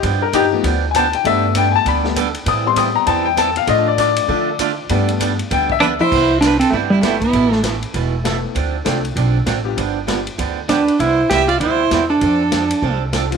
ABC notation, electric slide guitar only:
X:1
M:4/4
L:1/8
Q:"Swing" 1/4=197
K:C
V:1 name="Electric slide guitar"
z8 | z8 | z8 | z8 |
z6 D E- | E2 D C A, G, A, B,- | B,2 z6 | z8 |
z6 D2 | E2 G F E3 D- | D4- D z3 |]